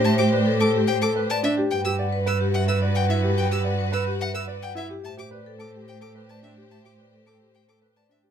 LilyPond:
<<
  \new Staff \with { instrumentName = "Violin" } { \time 3/4 \key a \dorian \tempo 4 = 108 a''16 d'''16 r8 d'''16 r16 g''16 d'''16 r16 a''16 e''16 r16 | g''16 e'''16 r8 e'''16 r16 fis''16 e'''16 r16 g''16 e''16 r16 | g''16 e'''16 r8 e'''16 r16 fis''16 e'''16 r16 g''16 e''16 r16 | a''16 d'''16 r8 d'''16 r16 g''16 d'''16 r16 a''16 e''16 r16 |
a''16 d'''16 r8 d'''16 r16 g''16 d'''16 r16 a''16 e''16 r16 | }
  \new Staff \with { instrumentName = "Alto flute" } { \time 3/4 \key a \dorian c''2~ c''8. r16 | b'2.~ | b'2~ b'8. r16 | c''2.~ |
c''2~ c''8. r16 | }
  \new Staff \with { instrumentName = "Vibraphone" } { \time 3/4 \key a \dorian e''16 r16 d''16 a'16 r16 g'16 c''16 r16 b'16 d''16 r16 g'16 | g''16 r16 fis''16 b'16 r16 g'16 e''16 r16 d''16 fis''16 r16 g'16 | g''16 r16 fis''16 b'16 r16 g'16 e''16 r16 d''16 fis''16 r16 g'16 | e''16 r16 d''16 a'16 r16 g'16 c''16 r16 b'16 d''16 r16 g'16 |
e''16 r16 d''16 a'16 r16 g'16 c''16 r16 b'16 d''16 r16 g'16 | }
  \new Staff \with { instrumentName = "Grand piano" } { \time 3/4 \key a \dorian r16 g'16 b'16 r16 a'16 r8 a'16 b'16 r16 d'16 g'16 | r16 g'16 d''16 r16 b'16 r8 b'16 d''16 r16 e'16 g'16 | r16 g'16 d''16 r16 b'16 r8 b'16 d''16 r16 e'16 g'16 | r16 g'16 b'16 r16 a'16 r8 a'16 b'16 r16 d'16 g'16 |
r16 g'16 b'16 r16 a'16 r8 a'16 b'16 r16 d'16 g'16 | }
  \new Staff \with { instrumentName = "String section" } { \time 3/4 \key a \dorian <g' c''>2~ <g' c''>8. r16 | <fis' b'>2.~ | <fis' b'>2~ <fis' b'>8. r16 | <g' c''>2.~ |
<g' c''>2~ <g' c''>8. r16 | }
  \new Staff \with { instrumentName = "Cello" } { \clef bass \time 3/4 \key a \dorian a,2. | g,2.~ | g,2. | a,2.~ |
a,2. | }
>>